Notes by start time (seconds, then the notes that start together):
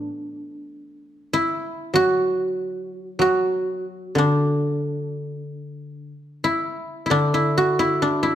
Already playing: A3 D4
1.33 E4
1.94 F#3 F#4
3.19 F#3 F#4
4.15 D3 D4
6.44 E4
7.06 E4
7.10 D3 D4
7.34 E4
7.58 F#4
7.79 E4
8.02 D4
8.23 E4